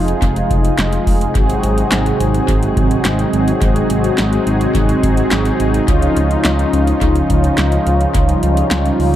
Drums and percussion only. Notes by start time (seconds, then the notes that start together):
0.08 closed hi-hat
0.22 kick, closed hi-hat
0.36 closed hi-hat
0.51 kick, closed hi-hat
0.65 closed hi-hat
0.78 snare, clap, closed hi-hat
0.93 closed hi-hat
1.07 kick, open hi-hat
1.21 closed hi-hat
1.35 kick, closed hi-hat
1.50 closed hi-hat
1.63 closed hi-hat
1.78 closed hi-hat
1.92 snare, clap, closed hi-hat
2.06 closed hi-hat
2.20 closed hi-hat
2.34 closed hi-hat
2.48 kick, closed hi-hat
2.63 closed hi-hat
2.77 kick, closed hi-hat
2.91 closed hi-hat
3.05 snare, clap, closed hi-hat
3.19 closed hi-hat
3.33 closed hi-hat
3.48 closed hi-hat
3.62 kick, closed hi-hat
3.76 closed hi-hat
3.90 closed hi-hat
4.04 closed hi-hat
4.18 snare, clap, closed hi-hat
4.33 closed hi-hat
4.47 closed hi-hat
4.61 closed hi-hat
4.75 kick, closed hi-hat
4.89 closed hi-hat
5.03 kick, closed hi-hat
5.17 closed hi-hat
5.31 snare, clap, closed hi-hat
5.45 closed hi-hat
5.60 closed hi-hat
5.74 closed hi-hat
5.88 kick, closed hi-hat
6.02 closed hi-hat
6.17 closed hi-hat
6.31 closed hi-hat
6.45 snare, clap, closed hi-hat
6.59 closed hi-hat
6.73 closed hi-hat
6.87 closed hi-hat
7.01 kick, closed hi-hat
7.16 closed hi-hat
7.30 kick, closed hi-hat
7.44 closed hi-hat
7.58 snare, clap, closed hi-hat
7.72 closed hi-hat
7.87 closed hi-hat
8.01 closed hi-hat
8.15 kick, closed hi-hat
8.29 closed hi-hat
8.43 closed hi-hat
8.57 closed hi-hat
8.71 snare, clap, closed hi-hat
8.86 closed hi-hat
9.00 open hi-hat